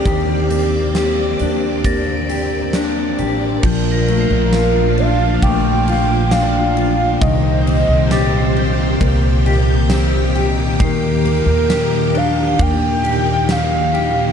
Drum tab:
CC |--------|x-------|--------|--------|
RD |--------|-xxxxxxx|xxxxxxxx|xxxxxxxx|
HH |xxxxxxxx|--------|--------|--------|
TB |--------|--x---x-|--x---x-|--x---x-|
SD |--o---o-|--o---o-|--o---o-|--o---o-|
BD |o---o---|o---o---|o---o---|o---o---|